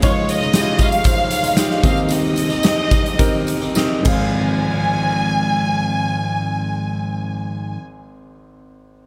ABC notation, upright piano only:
X:1
M:4/4
L:1/8
Q:1/4=101
K:Ab
V:1 name="Upright piano"
[A,EFd]2 [A,E_F=FG]2 [A,EFc]2 [A,EFG] [CEGe]- | [CEGe]2 [CEGe]2 [CEGB]2 [CEGe] [CAf]- | [CAf]8- | [CAf]8 |]
V:2 name="Upright piano" clef=bass
[D,,D,]6- [D,,D,] [E,,E,]- | [E,,E,]6- [E,,E,] A,,,- | A,,,8- | A,,,8 |]